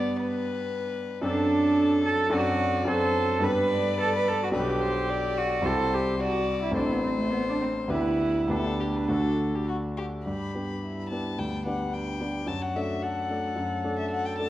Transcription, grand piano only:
0.00 1.19 G2 medium
0.00 1.20 B3 medium
0.00 1.20 D4 medium
0.00 1.20 G4 medium
1.22 2.28 F#2 medium
1.22 2.29 C4 medium
1.22 2.29 D4 medium
1.22 2.29 A4 medium
2.30 2.83 F#2 medium
2.30 2.84 C4 medium
2.30 2.85 D4 medium
2.30 2.85 A4 medium
2.85 3.40 F#2 medium
2.85 3.40 C4 medium
2.85 3.39 D4 medium
2.85 3.41 A4 medium
3.39 4.49 G2 medium
3.39 4.49 B3 medium
3.39 4.50 D4 medium
3.39 4.50 G4 medium
4.51 5.60 B1 medium
4.51 5.60 D4 medium
4.51 5.60 G4 medium
5.61 6.70 C2 medium
5.61 6.70 C4 medium
5.61 6.70 E4 medium
5.61 6.71 G4 medium
6.72 7.85 A1 medium
6.72 7.86 C4 medium
6.72 7.86 E4 medium
6.72 7.86 A4 medium
7.88 8.46 D2 medium
7.88 8.47 B3 soft
7.88 8.48 D4 soft
7.88 8.48 G4 soft
8.48 9.07 D2 medium
8.48 9.07 B3 soft
8.48 9.08 D4 soft
8.48 9.08 G4 medium
9.09 10.22 D2 medium
9.09 10.22 A3 soft
9.09 10.22 D4 medium
9.09 10.23 F#4 medium
10.26 10.54 G2 soft
10.55 11.07 B3 soft
10.55 11.07 D4 soft
10.55 11.08 G4 soft
11.12 11.37 B3 soft
11.12 11.36 D4 soft
11.12 11.37 G4 soft
11.38 11.65 D2 soft
11.66 12.17 B3 soft
11.66 12.17 D4 soft
11.66 12.17 G4 soft
12.20 12.45 B3 soft
12.20 12.45 D4 soft
12.20 12.45 G4 soft
12.46 12.74 F#2 soft
12.76 13.26 A3 soft
12.76 13.26 D4 soft
12.76 13.26 A4 soft
13.30 13.54 A3 soft
13.30 13.55 D4 soft
13.30 13.55 A4 soft
13.56 13.83 F#2 soft
13.84 14.35 A3 soft
13.84 14.35 D4 soft
13.84 14.35 A4 soft
14.39 14.49 A3 soft
14.39 14.49 D4 soft
14.39 14.49 A4 soft

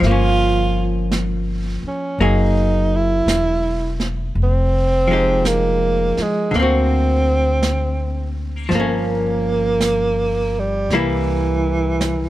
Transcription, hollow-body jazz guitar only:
0.00 2.18 F3 soft
0.07 2.19 A#3 medium
0.11 2.24 C#4 medium
2.21 4.37 F#3 soft
2.21 4.37 A#3 medium
2.21 4.38 G#4 medium
5.08 6.53 F3 soft
5.08 6.55 G#3 soft
5.12 6.55 D#4 soft
5.12 6.56 G4 soft
6.51 8.71 D3 soft
6.55 8.69 A#3 soft
6.60 8.75 C4 medium
6.60 8.76 F#4 soft
8.69 10.90 F3 soft
8.75 10.93 A#3 soft
8.80 10.94 C#4 soft
10.93 12.29 G3 soft
10.93 12.29 A#3 soft
10.93 12.29 E4 soft

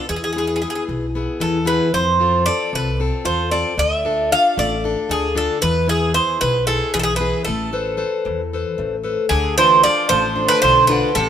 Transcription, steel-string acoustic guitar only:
0.11 0.61 E3 medium
0.36 0.62 B3 soft
0.36 0.63 E4 soft
0.36 0.63 G#4 soft
0.63 1.05 B3 soft
0.63 1.05 E4 soft
0.63 1.05 G#4 soft
0.89 1.40 B2 medium
1.15 1.57 B3 soft
1.15 1.58 E4 soft
1.15 1.58 G#4 soft
1.40 1.92 E3 medium
1.65 1.87 B3 soft
1.65 1.88 E4 soft
1.65 1.88 G#4 medium
1.94 2.45 F3 medium
2.20 2.46 C4 soft
2.20 2.46 F4 soft
2.20 2.46 A4 soft
2.47 2.89 C4 soft
2.47 2.89 F4 soft
2.47 2.89 A4 medium
2.75 3.25 C3 medium
3.00 3.42 C4 soft
3.00 3.24 F4 soft
3.00 3.42 A4 soft
3.25 3.51 F4 medium
3.52 3.73 C4 soft
3.52 3.73 F4 soft
3.52 3.73 A4 soft
3.78 4.29 D3 medium
4.05 4.31 D4 soft
4.05 4.31 F4 soft
4.05 4.31 A4 soft
4.32 4.74 D4 soft
4.32 4.74 F4 soft
4.32 4.74 A4 soft
4.58 5.08 A3 medium
4.84 5.26 D4 soft
4.84 5.26 F4 soft
4.84 5.27 A4 medium
5.09 5.61 D3 medium
5.35 5.57 D4 soft
5.35 5.57 F4 soft
5.35 5.57 A4 medium
5.61 6.13 E3 medium
5.87 6.13 B3 soft
5.87 6.14 E4 soft
5.87 6.14 G#4 soft
6.15 6.57 B3 soft
6.15 6.57 E4 soft
6.15 6.57 G#4 soft
6.41 6.92 B2 medium
6.67 7.09 B3 soft
6.67 7.10 E4 soft
6.67 7.10 G#4 medium
6.95 7.46 E3 medium
7.20 7.41 B3 soft
7.20 7.41 E4 soft
7.20 7.41 G#4 soft
7.48 7.72 A3 medium
7.73 7.96 A4 soft
7.73 7.96 B4 soft
7.73 7.97 C5 soft
7.97 8.40 A4 soft
7.97 8.40 B4 soft
7.97 8.41 C5 soft
8.25 8.76 E3 medium
8.53 8.95 A4 soft
8.53 8.95 B4 soft
8.53 8.95 C5 soft
8.78 9.29 A3 medium
9.04 9.25 A4 medium
9.04 9.25 B4 soft
9.04 9.25 C5 soft
9.31 9.82 D3 medium
9.58 9.84 D4 soft
9.58 9.84 F4 soft
9.58 9.85 A4 soft
9.85 10.26 D4 soft
9.85 10.27 F4 soft
9.85 10.27 A4 medium
10.11 10.61 A3 medium
10.36 10.78 D4 soft
10.36 10.78 F4 soft
10.36 10.78 A4 soft
10.63 11.14 D3 medium
10.89 11.10 D4 soft
10.89 11.10 F4 soft
10.89 11.10 A4 soft
11.16 11.29 A3 medium

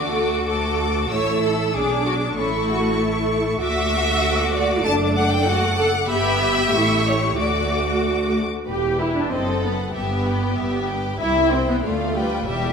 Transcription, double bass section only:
0.00 1.08 D2 soft
1.10 1.73 A1 soft
1.74 2.36 B1 soft
2.37 3.59 A1 soft
3.61 4.81 D2 medium
4.85 6.08 F#1 medium
6.10 6.70 G1 medium
6.74 7.38 A1 soft
7.37 8.45 D2 soft
8.67 9.24 E1 soft
9.32 9.87 F#1 soft
9.96 10.51 G1 soft
10.58 11.13 G1 soft
11.21 11.77 C2 soft
11.85 12.40 D2 soft
12.47 12.73 E1 medium

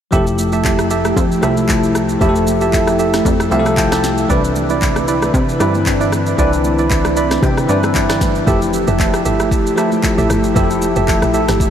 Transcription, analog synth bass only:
0.13 1.13 F1 loud
1.17 1.41 F2 loud
1.43 2.17 C2 loud
2.21 3.22 F1 loud
3.25 3.49 F2 loud
3.52 4.26 C2 loud
4.30 5.30 C2 loud
5.34 5.58 C3 loud
5.60 6.35 G2 loud
6.38 7.39 C2 loud
7.43 7.67 C3 loud
7.69 8.43 G2 loud

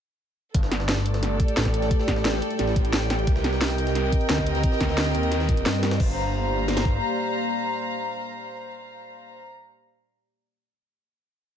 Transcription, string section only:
0.54 3.27 A4 medium
0.61 3.27 D5 medium
1.35 6.00 G5 medium
3.27 6.00 A#4 medium
3.58 6.00 D#5 medium
6.00 9.36 C5 medium
6.05 9.42 F5 medium
6.10 9.47 A#5 medium

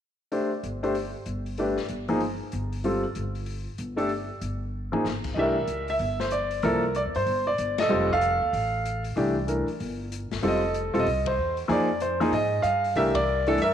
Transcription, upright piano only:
0.32 0.50 A3 medium
0.32 0.50 D4 soft
0.32 0.50 G4 soft
0.32 0.50 C5 medium
0.83 0.94 A3 medium
0.83 0.94 D4 medium
0.83 0.94 G4 medium
0.83 0.94 C5 medium
1.58 1.76 A3 medium
1.58 1.77 D4 medium
1.58 1.77 G4 medium
1.58 1.77 B4 medium
2.09 2.20 F3 medium
2.09 2.20 A#3 medium
2.09 2.20 D#4 medium
2.09 2.20 G#4 medium
2.84 3.02 G3 soft
2.84 3.03 C4 medium
2.84 3.03 F4 medium
2.84 3.03 A4 medium
3.96 4.08 A3 medium
3.96 4.09 D4 medium
3.96 4.09 G4 medium
3.96 4.09 A4 medium
4.92 5.04 F3 medium
4.92 5.04 A#3 medium
4.92 5.04 D#4 soft
4.92 5.04 G#4 medium
5.34 5.55 E3 medium
5.34 5.55 A3 soft
5.34 5.56 D4 medium
5.34 5.55 G4 medium
5.34 5.39 D#5 soft
5.39 5.98 A#4 medium
5.39 5.86 E5 medium
5.90 6.22 E5 medium
6.20 6.32 C5 medium
6.32 6.65 D5 medium
6.63 6.81 F3 medium
6.63 6.82 A#3 medium
6.63 6.82 E4 medium
6.63 6.82 A4 medium
6.63 6.93 A#4 medium
6.96 7.01 D5 medium
7.16 7.48 C5 medium
7.47 7.79 D5 medium
7.79 7.89 A4 medium
7.79 8.11 D#5 medium
7.89 8.08 G3 medium
7.89 8.08 C4 medium
7.89 8.08 F4 medium
7.89 8.08 A4 medium
8.13 9.02 A4 medium
8.13 9.02 F5 loud
9.16 9.34 E3 medium
9.16 9.35 A3 medium
9.16 9.35 D4 medium
9.16 9.35 G4 medium
9.47 9.66 E3 soft
9.47 9.66 A3 soft
9.47 9.66 D4 soft
9.47 9.66 A#4 soft
10.43 10.61 G3 medium
10.43 10.61 C4 medium
10.43 10.61 F4 medium
10.43 10.45 A4 medium
10.47 10.93 A4 medium
10.47 10.75 D#5 medium
10.94 11.04 G3 medium
10.94 11.04 C4 medium
10.94 11.04 F4 medium
10.94 11.05 A4 medium
11.00 11.29 D#5 medium
11.27 11.56 C5 medium
11.68 11.87 F3 medium
11.68 11.87 A#3 medium
11.68 11.87 D#4 medium
11.68 11.87 G#4 medium
11.68 12.00 D5 medium
12.02 12.34 C5 medium
12.20 12.31 F3 medium
12.20 12.31 A#3 medium
12.20 12.31 D#4 medium
12.20 12.31 G#4 medium
12.34 12.92 G#4 medium
12.34 12.65 D#5 medium
12.62 12.92 F5 medium
12.96 13.14 E3 medium
12.96 13.13 A3 medium
12.96 13.14 D4 medium
12.96 13.14 G4 medium
12.96 13.56 A#4 medium
12.96 13.15 E5 medium
13.15 13.45 D5 loud
13.47 13.57 E3 medium
13.47 13.57 A3 medium
13.47 13.58 D4 medium
13.47 13.58 A4 medium
13.62 13.74 A#4 medium
13.62 13.74 E5 loud

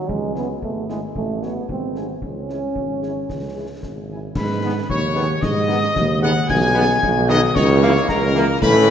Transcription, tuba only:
0.10 0.54 C#2 medium
0.62 1.07 G#1 soft
1.15 1.60 A1 medium
1.70 2.14 G#1 soft
2.23 2.67 C#2 medium
2.76 3.21 G#1 soft
3.30 3.74 C#2 medium
3.83 4.27 G#1 medium
4.37 4.81 G#2 medium
4.90 5.34 D#2 medium
5.43 5.87 G#2 loud
5.96 6.40 D#2 loud
6.50 6.94 B1 loud
7.03 7.47 B1 loud
7.57 7.97 C#2 loud
8.10 8.53 C#2 loud
8.63 8.90 A2 loud

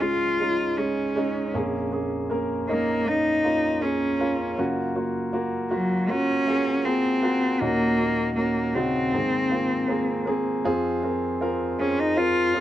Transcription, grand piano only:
0.00 1.50 C#2 medium
0.00 1.50 G#2 medium
0.00 0.02 G#3 medium
0.00 0.38 G#3 medium
0.00 0.02 C#4 medium
0.00 0.38 C#4 soft
0.00 1.56 F4 medium
0.00 0.02 G#4 medium
0.00 0.38 G#4 medium
0.40 0.76 G#3 medium
0.40 0.76 C#4 soft
0.40 0.77 D#4 medium
0.78 1.14 G#3 soft
0.78 1.14 C#4 soft
0.78 1.15 G#4 medium
1.16 1.52 G#3 medium
1.16 1.52 C#4 medium
1.16 1.52 D#4 medium
1.54 4.54 A#1 soft
1.54 4.54 F2 soft
1.54 1.90 A#3 medium
1.54 1.90 C#4 medium
1.54 1.91 G#4 medium
1.92 2.28 A#3 medium
1.92 2.28 C#4 medium
1.92 2.29 G#4 medium
2.30 2.66 A#3 medium
2.30 2.66 C#4 medium
2.30 2.66 A#4 medium
2.68 3.04 A#3 medium
2.68 3.04 C#4 medium
2.68 3.05 D#4 medium
3.06 3.42 A#3 soft
3.06 3.42 C#4 soft
3.06 3.42 D#4 medium
3.43 3.80 A#3 medium
3.43 3.80 C#4 soft
3.43 3.80 F4 medium
3.81 4.17 A#3 medium
3.81 4.18 C#4 soft
3.81 4.18 G#4 medium
4.20 4.56 A#3 medium
4.20 4.56 C#4 medium
4.20 4.56 F4 medium
4.58 7.58 F#2 soft
4.58 7.58 C#3 soft
4.58 4.94 A#3 medium
4.58 4.94 F4 medium
4.58 4.94 F#4 medium
4.96 5.31 A#3 medium
4.96 5.32 F4 medium
4.96 5.32 F#4 medium
5.33 5.69 A#3 medium
5.33 5.69 F4 medium
5.33 5.70 F#4 medium
5.70 6.07 A#3 medium
5.70 6.07 F4 medium
5.70 6.07 F#4 medium
6.09 6.45 A#3 medium
6.09 6.46 F4 medium
6.09 6.46 F#4 medium
6.47 6.83 A#3 medium
6.47 6.84 F4 soft
6.47 6.84 G#4 medium
6.85 7.21 A#3 medium
6.85 7.21 F4 soft
6.85 7.22 G#4 medium
7.22 7.59 A#3 medium
7.22 7.59 F4 medium
7.22 7.59 F#4 medium
7.61 9.09 D#2 soft
7.61 9.09 A#2 soft
7.61 7.97 C#4 medium
7.61 7.97 D#4 medium
7.61 7.98 F#4 medium
7.99 8.35 C#4 soft
7.99 8.35 D#4 soft
7.99 8.36 F#4 medium
8.37 8.73 C#4 medium
8.37 8.73 D#4 medium
8.37 8.74 F#4 medium
8.75 9.11 C#3 medium
8.75 9.12 D#4 medium
8.75 9.12 F#4 medium
9.13 10.61 G#2 soft
9.13 10.61 D#3 soft
9.13 9.49 A#3 soft
9.13 9.49 C4 soft
9.13 9.50 G#4 medium
9.50 9.87 A#3 medium
9.50 9.87 C4 soft
9.50 9.88 F4 medium
9.88 10.24 A#3 medium
9.88 10.25 C4 medium
9.88 10.25 G#4 medium
10.26 10.63 A#3 medium
10.26 10.63 C4 medium
10.26 10.63 G#4 medium
10.65 12.60 F2 medium
10.65 11.01 C4 medium
10.65 11.01 F4 medium
10.65 11.01 G#4 loud
11.03 11.39 C4 medium
11.03 11.39 F4 medium
11.03 11.40 A#4 medium
11.41 11.77 C4 medium
11.41 11.77 F4 medium
11.41 11.78 A#4 medium
11.79 12.14 C4 medium
11.79 12.15 F4 soft
11.79 12.16 G#4 medium
12.16 12.52 C4 medium
12.16 12.53 F4 medium
12.16 12.53 A#4 medium
12.54 12.60 C4 medium
12.54 12.60 F4 medium
12.54 12.60 G#4 medium

